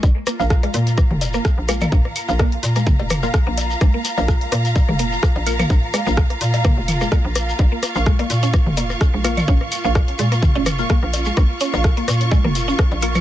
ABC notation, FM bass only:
X:1
M:4/4
L:1/16
Q:"Swing 16ths" 1/4=127
K:Bbm
V:1 name="FM bass" clef=bass
B,,, z2 B,,,2 z B,,2 z F,,,2 z2 B,,,2 z | B,,, z2 B,,,2 z B,,2 z F,,,2 z2 B,,,2 z | B,,, z2 B,,,2 z B,,2 z F,,,2 z2 B,,,2 z | B,,, z2 B,,,2 z B,,2 z F,,,2 z2 B,,,2 z |
B,,, z2 B,,,2 z B,,2 z F,,,2 z2 B,,,2 z | B,,, z2 B,,,2 z B,,2 z F,,,2 z2 B,,,2 z | B,,, z2 B,,,2 z B,,2 z F,,,2 z2 B,,,2 z |]